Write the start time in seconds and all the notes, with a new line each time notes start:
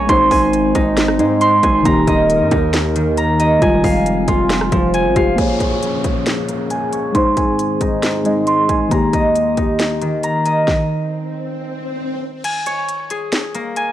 Already playing: A#3 G#4 C#5 G#5
0.07 G#1 G#3 C4 D#4 C6, kick, closed hi-hat
0.12 C5
0.31 G#1 G#5, kick, open hi-hat
0.53 closed hi-hat
0.75 G#1 D#4, kick, closed hi-hat
0.97 snare, closed hi-hat
1.08 cross-stick
1.18 G#2 G#3 D#4 D#5, closed hi-hat
1.41 C6, closed hi-hat
1.63 G#1 G#5, kick, closed hi-hat
1.83 D#1 D#3 A#3 A#4 A#5, kick, closed hi-hat
1.88 G4
2.07 D#1 D#5, kick, closed hi-hat
2.30 closed hi-hat
2.41 G2
2.51 D#2 D#4, kick, closed hi-hat
2.73 snare, closed hi-hat
2.96 D#3, closed hi-hat
3.17 A#5, closed hi-hat
3.40 D#5, closed hi-hat
3.59 F1 F3 G#3 C4 F4 G#5, kick, closed hi-hat
3.64 G3
3.84 F1 F5, kick, open hi-hat
4.06 closed hi-hat
4.28 F1 F4, kick, closed hi-hat
4.50 snare, closed hi-hat
4.61 cross-stick
4.72 F1 F3, kick, closed hi-hat
4.94 G#5, closed hi-hat
5.05 G#1
5.15 F1 G#3 F4 G4 F5, kick, closed hi-hat
5.36 A#2 F3 A#3 C#4 G#4 G#5, kick, closed hi-hat, downlifter
5.41 C#5
5.60 C#5, kick, closed hi-hat
5.83 closed hi-hat
6.04 G#4, kick, closed hi-hat
6.26 snare, closed hi-hat
6.49 A#3, closed hi-hat
6.70 G#5, closed hi-hat
6.93 C#5, closed hi-hat
7.12 G#2 D#3 G#3 C4 D#4 C6, kick, closed hi-hat
7.17 C5
7.37 G#5, kick, closed hi-hat
7.59 closed hi-hat
7.81 D#4, kick, closed hi-hat
8.03 snare, closed hi-hat
8.24 G#3 D#4 D#5, closed hi-hat
8.47 C6, closed hi-hat
8.69 G#5, kick, closed hi-hat
8.89 D#2 D#3 A#3 G4 A#5, kick, closed hi-hat
8.94 G4
9.13 D#5, kick, closed hi-hat
9.36 closed hi-hat
9.57 D#4, kick, closed hi-hat
9.79 snare, closed hi-hat
10.02 D#3, closed hi-hat
10.23 A#5, closed hi-hat
10.46 D#5, closed hi-hat
10.68 kick, snare, swell
12.44 G#5, closed hi-hat, crash
12.66 C#5, closed hi-hat
12.89 closed hi-hat
13.10 G#4, closed hi-hat
13.32 snare, closed hi-hat
13.55 A#3, closed hi-hat
13.76 G#5, closed hi-hat